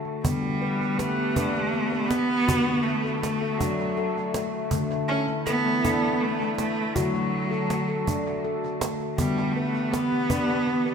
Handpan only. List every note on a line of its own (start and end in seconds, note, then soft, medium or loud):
0.00 0.20 D3 medium
0.05 0.24 A3 medium
0.24 1.36 D3 medium
0.24 0.61 B3 medium
0.62 0.80 B4 medium
0.80 0.99 B3 medium
0.99 1.18 B4 medium
1.18 1.37 B3 medium
1.36 2.44 D4 medium
1.36 1.74 B4 medium
1.74 1.92 B3 medium
1.92 2.11 B4 medium
2.11 2.48 B3 medium
2.48 3.60 D3 medium
2.48 2.66 F#4 medium
2.67 3.04 A3 medium
3.04 3.23 A4 medium
3.22 3.41 A3 medium
3.42 3.60 A4 medium
3.60 3.97 A3 medium
3.60 4.68 D4 medium
3.97 4.35 A4 medium
4.34 4.71 A3 medium
4.72 5.84 D3 medium
4.72 5.09 A3 medium
5.09 5.28 A4 medium
5.28 5.46 A3 medium
5.47 5.65 A4 medium
5.66 5.84 A3 medium
5.84 6.91 D4 medium
5.84 6.21 A4 medium
6.21 6.39 A3 medium
6.40 6.58 A4 medium
6.59 6.95 A3 medium
6.96 8.07 D3 medium
6.96 7.14 F#4 medium
7.14 7.51 A3 medium
7.51 7.69 A4 medium
7.70 7.88 A3 medium
7.89 8.07 A4 medium
8.07 8.44 A3 medium
8.07 9.14 D4 medium
8.45 8.81 A4 medium
8.82 9.18 A3 medium
9.19 10.30 D3 medium
9.19 9.55 B3 medium
9.56 9.74 B4 medium
9.75 9.93 B3 medium
9.93 10.11 B4 medium
10.12 10.30 B3 medium
10.30 10.95 D4 medium
10.30 10.67 B4 medium
10.67 10.86 B3 medium
10.86 10.95 B4 medium